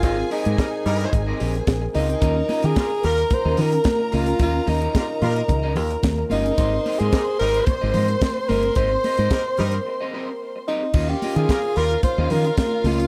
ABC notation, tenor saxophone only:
X:1
M:4/4
L:1/16
Q:1/4=110
K:Ab
V:1 name="Tenor saxophone"
F2 E8- E2 z2 E2- | E3 A3 B2 c2 B2 B2 F2 | F2 E8- E2 z2 E2- | E3 A3 B2 c6 B2 |
c12 z2 E2- | E G2 A3 B2 c2 B2 B2 F2 |]